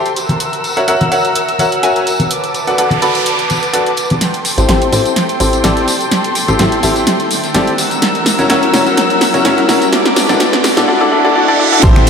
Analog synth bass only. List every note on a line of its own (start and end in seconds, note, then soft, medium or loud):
4.58 4.67 A1 medium
4.69 4.90 A1 medium
4.93 5.06 A1 medium
5.40 5.62 A1 medium
5.64 5.86 A1 medium
6.48 6.57 A1 medium
6.59 6.81 A1 loud
6.83 7.05 A1 loud
7.54 7.68 A1 medium
8.39 8.48 F#1 loud
8.50 8.71 F#1 loud
8.73 8.87 F#1 loud
9.34 9.43 F#1 loud
9.45 9.67 F#1 loud
9.69 9.82 F#1 loud
10.29 10.36 B1 loud
10.77 10.86 B1 medium
11.83 12.10 A1 medium